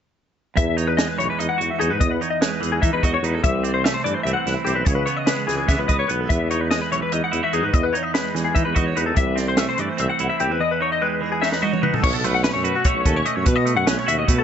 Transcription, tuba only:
0.57 E2
1.19 B1
1.40 E2
1.60 E2
1.81 E2
1.92 G#2
2.01 E2
2.63 E2
2.83 E3
2.93 E2
3.04 E2
3.22 E2
3.44 C2
4.05 G2
4.25 C2
4.46 C2
4.66 C2
4.75 B1
4.87 C#2
5.48 C#2
5.69 C#3
5.78 C#2
5.89 C#2
6.09 B1
6.30 E2
6.92 B1
7.13 E2
7.33 E2
7.53 E2
7.64 G#2
7.74 E2
8.34 E2
8.56 E3
8.66 E2
8.76 E2
8.97 E2
9.17 C2
9.80 G2
10.00 C2
10.20 C2
10.40 C2
10.50 E2
12.04 B1
12.14 B1
12.24 B1
12.55 F#2
12.95 B1
13.05 D#2
13.37 F#2
13.47 B2
13.77 F#2
13.87 B1
14.08 D#2
14.29 B2

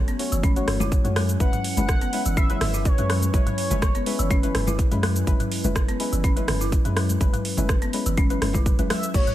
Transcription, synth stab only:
Already playing: A3 C#4 F#4 C#5
0.19 A3 C#4 F#4 C#5
0.56 A3 C#4 F#4 C#5
1.05 A3 C#4 F#4 C#5
1.40 G#3 C#4 E4 B4
1.77 G#3 C#4 E4 B4
2.13 G#3 C#4 E4 B4
2.50 G#3 C#4 E4 B4
2.98 G#3 C#4 E4 B4
3.34 G#3 C#4 E4 B4
3.71 G#3 C#4 E4 B4
4.06 G#3 C#4 E4 B4
4.43 G#3 C#4 E4 B4
4.92 G#3 C#4 E4 B4
5.27 G#3 C#4 E4 B4
5.64 G#3 C#4 E4 B4
6.00 G#3 C#4 E4 B4
6.37 G#3 C#4 E4 B4
6.85 G#3 C#4 E4 B4
7.21 G#3 C#4 E4 B4
7.58 G#3 C#4 E4 B4
7.93 G#3 C#4 E4 B4
8.30 G#3 C#4 E4 B4
8.42 G#3 C#4 E4 B4
8.79 G#3 C#4 E4 B4
9.14 A3 C#4 F#4 C#5

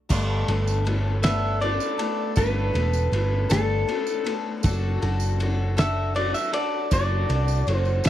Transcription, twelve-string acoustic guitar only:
0.09 G2 D3 A3 B3 D4 A4
0.48 A3 B3 D4 A4
0.85 A3 B3 D4 A4
1.23 G2 D3 A3 B3 D4 A4
1.60 A3 B3 D4 A4
1.98 A3 B3 D4 A4
2.36 G2 D3 A3 B3 D4 A4
2.74 A3 B3 D4 A4
3.12 A3 B3 D4 A4
3.49 G2 D3 A3 B3 D4 A4
3.87 A3 B3 D4 A4
4.24 A3 B3 D4 A4
4.63 F#3 D4 F#4 A4
5.02 D4 F#4 A4
5.39 F#3 D4 F#4 A4
5.77 F#3 D4 F#4 A4
6.14 F#3 D4 F#4 A4
6.52 D4 F#4 A4
6.91 F#3 D4 F#4 A4
7.29 D4 F#4 A4
7.67 F#3 D4 F#4 A4
8.04 F#3 D4 F#4 A4

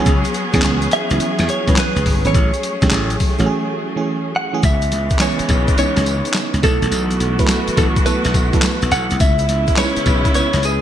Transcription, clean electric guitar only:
0.93 E5
1.50 C#5
1.79 B4
2.27 C#5
4.36 F#5
4.65 E5
5.22 C#5
5.79 C#5
6.64 A4
7.78 A4
8.06 B4
8.92 F#5
9.21 E5
9.78 C#5
10.35 C#5
10.65 G#4

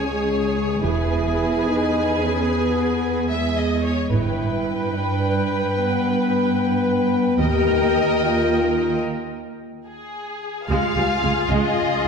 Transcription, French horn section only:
0.01 G#3
0.82 E4
1.66 D#4
2.20 C#4
2.46 B3
3.29 G#3
4.11 E4
4.94 D4
5.76 B3
6.58 B3
7.40 G4
8.23 F4
10.70 C#4 G#4

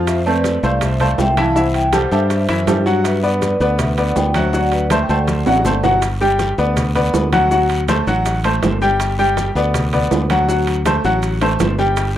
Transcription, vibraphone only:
0.07 C5 E5
0.26 B4 D5
0.63 D5 F5
0.82 C5 E5
1.01 D5 F5
1.19 E5 G5
1.38 A5
1.57 C5 F#5
1.75 E5 G5
1.94 C5 F#5
2.12 C5 E5
3.05 B4 E5
3.24 B4 D5
3.61 D5 F#5
3.79 B4 E5
3.98 D5 F#5
4.16 D5 G5
4.35 C5 E5
4.53 D5 F#5
4.72 B4 D5
4.91 C5 E5
5.02 G5
5.10 D5 F#5

